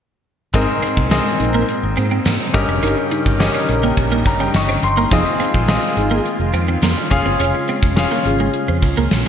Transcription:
0.54 G#1 G#2 A#2 G#3 C4 D#4 G#4 A#4 D#5, kick, closed hi-hat, tambourine
0.69 muted clean electric guitar stroke
0.83 C4, closed hi-hat, tambourine
0.97 C2, kick
1.11 G#3 C4 G#4 A#4 D#5, snare, closed hi-hat, tambourine
1.26 muted clean electric guitar stroke
1.39 A#1 C4 D#4 A#4, closed hi-hat, tambourine
1.54 A#3
1.69 muted clean electric guitar stroke, closed hi-hat, tambourine
1.83 G#1
1.97 G#2 C4, closed hi-hat, tambourine
2.11 C4
2.25 G#2 A#3, snare, closed hi-hat, tambourine
2.40 muted clean electric guitar stroke
2.54 G1 G2 C#3 G3 C#4 D#4 G4 A#4 D#5, kick, closed hi-hat, tambourine
2.68 F1 C#4
2.83 G1 D#4 G4 A#4, closed hi-hat, tambourine
2.97 muted clean electric guitar stroke
3.11 D#4, closed hi-hat, tambourine
3.26 G1, kick
3.39 C#4 G4 A#4 D#5, snare, closed hi-hat, tambourine
3.55 C#4, closed hi-hat
3.69 A#1 D#4 G4 A#4, muted clean electric guitar stroke, closed hi-hat, tambourine
3.83 A#3
3.97 A#1, kick, closed hi-hat
4.12 A#3
4.26 G1 A#5, muted clean electric guitar stroke, kick, closed hi-hat, tambourine
4.40 C#4 G5
4.54 G1 D#5 C#6, snare, closed hi-hat, tambourine
4.69 C4
4.83 G1 C6, muted clean electric guitar stroke, closed hi-hat, tambourine
4.97 A#3 A#5
5.11 F1 D#3 F3 G#3 C4 D#4 F4 G#4 D#5, kick, closed hi-hat, tambourine
5.26 muted clean electric guitar stroke
5.39 C4, closed hi-hat, tambourine
5.54 A#1, kick
5.68 G#3 C4 F4 G#4 D#5, snare, closed hi-hat, tambourine
5.83 muted clean electric guitar stroke, closed hi-hat
5.97 G#1 D#4 F4 G#4, closed hi-hat, tambourine
6.11 A#3
6.26 muted clean electric guitar stroke, closed hi-hat
6.39 F1
6.53 F2 C4, closed hi-hat, tambourine
6.68 C4
6.82 F2 A#3, snare, closed hi-hat, tambourine
6.97 muted clean electric guitar stroke
7.11 F1 C#3 G#3 C#4 F4 G#4 F5, kick, closed hi-hat, tambourine
7.26 G1 C4
7.39 F1 C#4 F4 G#4, closed hi-hat, tambourine
7.55 muted clean electric guitar stroke
7.68 C4, closed hi-hat, tambourine
7.83 F1, kick
7.96 C#4 F4 G#4 F5, snare, closed hi-hat, tambourine
8.11 A#3, closed hi-hat
8.25 G#1 C#4 F4 G#4, muted clean electric guitar stroke, closed hi-hat, tambourine
8.40 G#3
8.54 closed hi-hat
8.68 F2 C4
8.82 C#2, muted clean electric guitar stroke, kick, closed hi-hat, tambourine
8.97 C#2 A#3, closed hi-hat
9.11 A#1, snare, closed hi-hat, tambourine

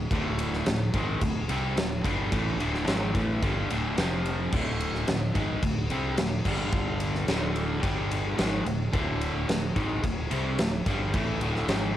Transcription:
0.11 D1 D2 A2 D3, kick, ride
0.39 ride
0.53 snare
0.66 D1 D2 A2, snare, ride
0.94 G#1 G#2 D#3 G#3, kick, ride
1.21 D1 D2 A2, kick, ride
1.49 C2 C3 G3 C4, ride
1.77 D1 D2 A2, snare, ride
2.04 G1 G2 D3 G3, kick, ride
2.31 A1 A2 E3 A3, kick, ride
2.59 D1 D2 A2 D3, ride
2.74 snare
2.86 G#1 G#2 D#3 G#3, snare, ride
3.14 A1 A2 E3 A3, kick, ride
3.42 G1 G2 D3 G3, kick, ride
3.70 D1 D2 A2 D3, ride
3.97 F1 F2 C3 F3, snare, ride
4.26 ride
4.52 D1 D2 A2 D3, kick, crash
4.80 ride
4.94 snare
5.08 D1 D2 A2, snare, ride
5.34 G#1 G#2 D#3 G#3, kick, ride
5.62 D1 D2 A2, kick, ride
5.90 C2 C3 G3 C4, ride
6.17 D1 D2 A2, snare, ride
6.45 G1 G2 D3 G3, kick, crash
6.73 kick
7.00 ride
7.14 snare
7.28 D1 D2 A2 D3, snare, ride
7.56 ride
7.82 G1 G2 D3 G3, kick, ride
8.12 ride
8.37 G#1 G#2 D#3 G#3, snare, ride
8.65 D1 D2 A2, ride
8.93 D1 D2 A2 D3, kick, ride
9.21 ride
9.48 D1 D2 A2, snare, ride
9.75 G#1 G#2 D#3 G#3, kick, ride
10.03 D1 D2 A2, kick, ride
10.31 C2 C3 G3 C4, ride
10.59 D1 D2 A2, snare, ride
10.86 G1 G2 D3 G3, kick, ride
11.13 A1 A2 E3 A3, kick, ride
11.41 D1 D2 A2 D3, ride
11.56 snare
11.68 G#1 G#2 D#3 G#3, snare, ride

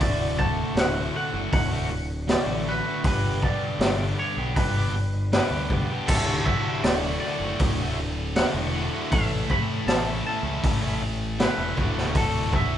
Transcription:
Already playing: D1
0.00 D2 A2 D3 A3 F#4 D5, kick, open hi-hat
0.38 A2 D3 A3 F#4 A5, kick
0.75 D1 D2 A2 D3, snare, open hi-hat
0.79 A3 F#4 F#5
0.96 D3 A3 F#4
1.15 A2 D3 A3 F#4 F#5
1.33 F#1 D3 A3 F#4
1.52 D1 F#5, kick, open hi-hat
1.71 D3 A3 F#4
1.91 muted distorted electric guitar stroke
2.28 D2 A2 D3 A3 F#4 D5, snare, open hi-hat
2.46 A1 D3 A3 F#4
2.66 A2 D3 A3 F#4 B4
2.85 D3 A3 F#4
3.03 G1 G2 D3 G3 B3 D4 G4, kick, open hi-hat
3.07 B4
3.42 G3 B3 D4 G4 D5, kick
3.79 G1 G2 D3 G3 B3, snare, open hi-hat
3.83 D4 G4
4.00 G3 B3 D4 G4
4.19 G3 B3 D4 G4 C#5
4.37 B1 G3 B3 D4 G4
4.56 G1 B4, kick, open hi-hat
4.77 G3 B3 D4 G4
4.95 muted distorted electric guitar stroke
5.32 G2 D3 G3 B3 D4 G4 B4, snare, open hi-hat
5.51 D2 B3 D4 G4
5.55 G3
5.70 G3 B3 D4 G4, kick
5.90 G3 B3 D4 G4
6.08 D1 D2 A2 D3 A3 F#4 A4, kick, crash
6.45 A2 D3 E5, kick
6.50 A3 F#4
6.84 D1 D2 A2 D3 A3 D5, snare, open hi-hat
6.88 F#4
7.05 D3 A3 F#4
7.20 A2 D5
7.26 D3 A3 F#4
7.40 F#1 F#4
7.45 D3 A3
7.59 D1, kick, open hi-hat
7.81 D3 A3 F#4
8.00 muted distorted electric guitar stroke
8.36 D2 A2 D3 A3 F#4 F#5, snare, open hi-hat
8.54 E1 D3 A3 F#4
8.75 D2 A2 D3 A3 F#4
8.94 D3 A3 F#4
9.12 A1 A2 E3 A3 C#4 E4 A4 E5, kick, open hi-hat
9.50 A3 C#4 E4 A4 B5, kick
9.87 A1 A2 E3 A3 C#4 A5, snare, open hi-hat
9.91 E4 A4
10.07 A3 C#4 E4 A4
10.26 A3 C#4 E4 A4 A5
10.43 C#2 A3 C#4 E4 A4
10.64 A1, kick, open hi-hat
10.81 A3 C#4 E4 A4
11.02 muted distorted electric guitar stroke
11.39 A2 E3 A3 C#4 E4 A4 B4, snare, open hi-hat
11.57 E1 A3 C#4 E4 A4
11.77 D1 D2 A2 D3 A3 F#4, kick
11.96 D3 A3 F#4, snare
12.15 D2 A2 D3 A3 F#4 A4, kick, open hi-hat
12.52 A2 D3 A3 F#4 E5, kick

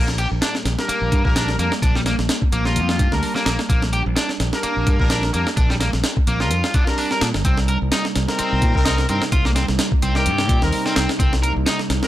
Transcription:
Already playing: A#1 G3 A#3 D4
0.08 snare
0.18 G4, closed hi-hat
0.32 A#1
0.42 D4, snare, closed hi-hat
0.55 snare
0.65 A#1, snare, closed hi-hat
0.78 D4 G4 A#4, snare
0.89 A#3, muted fingered electric bass stroke, closed hi-hat
1.02 A#1
1.12 G2, kick, closed hi-hat
1.25 A#1 D4 G4 A#4, kick
1.36 D4, snare, closed hi-hat
1.49 snare
1.59 F2 A#3 D4 G4 A#4, closed hi-hat
1.72 snare
1.82 A#1 D4, kick, closed hi-hat
1.95 G3, snare
2.06 A#3, snare, closed hi-hat
2.19 A#1, snare
2.29 snare, closed hi-hat
2.42 kick
2.52 A#1 A#3, closed hi-hat
2.65 D4 F4 G4 A#4, snare
2.76 F2, closed hi-hat
2.89 snare
2.99 G2, kick, closed hi-hat
3.12 D2 D4 G4 A#4, snare
3.23 open hi-hat
3.35 A#3 D4 G4 A#4, snare
3.46 A#1 A#3, snare, closed hi-hat
3.59 snare
3.69 A#1 A#3 C4, kick, closed hi-hat
3.82 snare
3.93 G4, closed hi-hat
4.06 A#1
4.16 D4, snare, closed hi-hat
4.29 snare
4.40 A#1, snare, closed hi-hat
4.53 D4 G4 A#4, snare
4.63 A#3, muted fingered electric bass stroke, closed hi-hat
4.77 A#1
4.87 G2, kick, closed hi-hat
5.00 A#1 D4 G4 A#4, kick
5.10 D4, snare, closed hi-hat
5.23 snare
5.33 F2 A#3 D4 G4 A#4, closed hi-hat
5.47 snare
5.57 A#1 D4, kick, closed hi-hat
5.70 G3, snare
5.80 A#3, snare, closed hi-hat
5.93 A#1, snare
6.04 snare, closed hi-hat
6.17 kick
6.27 A#1 A#3, closed hi-hat
6.40 D4 F4 G4 A#4, snare
6.51 F2, closed hi-hat
6.64 snare
6.74 D4, kick, closed hi-hat
6.87 D4 G4 A#4, snare
6.98 D4, open hi-hat
7.11 D4 G4 A#4, snare
7.21 A#2 D4, snare, closed hi-hat
7.34 G1, snare
7.45 C2 C3 A#3 C4 D#4, kick, closed hi-hat
7.57 snare
7.68 A#4, closed hi-hat
7.82 C2
7.92 D#4, snare, closed hi-hat
8.05 snare
8.15 C2, snare, closed hi-hat
8.28 C4 D#4 A#4, snare
8.39 C4, muted fingered electric bass stroke, closed hi-hat
8.53 C2
8.62 A#2, kick, closed hi-hat
8.75 C2 C4 D#4 A#4, kick
8.86 D#4, snare, closed hi-hat
8.98 snare
9.09 G2 C4 D#4 A#4, closed hi-hat
9.22 snare
9.32 C2 F4, kick, closed hi-hat
9.45 A#3, snare
9.56 C4, snare, closed hi-hat
9.68 C2, snare
9.79 snare, closed hi-hat
9.92 kick
10.02 C2 C4, closed hi-hat
10.15 C4 D#4 G4 A#4, snare
10.26 G2, closed hi-hat
10.38 snare
10.49 A#2, kick, closed hi-hat
10.62 D#2 C4 D#4 A#4, snare
10.72 open hi-hat
10.86 C4 D#4 A#4, snare
10.96 C2 C4, snare, closed hi-hat
11.09 snare
11.19 C2 C4, kick, closed hi-hat, riser
11.33 snare
11.43 A#4, closed hi-hat
11.56 C2
11.66 D#4, snare, closed hi-hat
11.79 snare
11.90 C2, snare, closed hi-hat
12.03 C4 D#4 A#4, snare

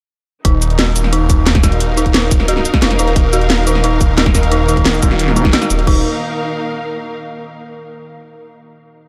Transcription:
0.45 D#1 D#4, kick, closed hi-hat
0.62 closed hi-hat, cabasa
0.70 A#4, closed hi-hat
0.79 F#4, snare, closed hi-hat
0.91 F5
0.96 D#1, closed hi-hat, cabasa
1.04 snare
1.13 D#4, closed hi-hat
1.30 D#4, kick, closed hi-hat, cabasa
1.47 snare, closed hi-hat
1.55 kick, snare, closed hi-hat
1.63 F#4, kick, snare, closed hi-hat, cabasa
1.72 closed hi-hat
1.80 closed hi-hat
1.97 D#4, closed hi-hat, cabasa
2.06 kick, closed hi-hat
2.14 D#4, snare, closed hi-hat
2.31 D#1, kick, closed hi-hat, cabasa
2.40 snare
2.48 F#4, closed hi-hat
2.57 snare
2.65 closed hi-hat, cabasa
2.74 kick, snare
2.82 F1 D#4, snare, closed hi-hat
2.91 snare, closed hi-hat
2.99 D#1 D#4, closed hi-hat, cabasa
3.08 closed hi-hat
3.16 D#1 D#3 A#3 A#4, kick, closed hi-hat
3.33 F#4, closed hi-hat, cabasa
3.41 closed hi-hat
3.50 snare, closed hi-hat
3.67 D#1 D#4, closed hi-hat, cabasa
3.75 snare
3.84 D#4, closed hi-hat
4.01 kick, closed hi-hat, cabasa
4.18 F#4, snare, closed hi-hat
4.26 kick, snare, closed hi-hat
4.35 kick, snare, closed hi-hat, cabasa
4.43 closed hi-hat
4.52 D#4, closed hi-hat
4.69 D#4, closed hi-hat, cabasa
4.77 kick, closed hi-hat
4.86 snare, closed hi-hat
4.94 cabasa
5.02 D#1 F#4, kick, closed hi-hat, cabasa
5.11 snare
5.19 closed hi-hat
5.28 snare
5.36 D#4, closed hi-hat, cabasa
5.45 kick, snare
5.53 F#4, snare, closed hi-hat
5.62 snare, closed hi-hat, cabasa
5.70 D#1, closed hi-hat, cabasa
5.79 closed hi-hat
5.87 D#1 D#4, kick, crash
5.92 A#4
5.97 F5

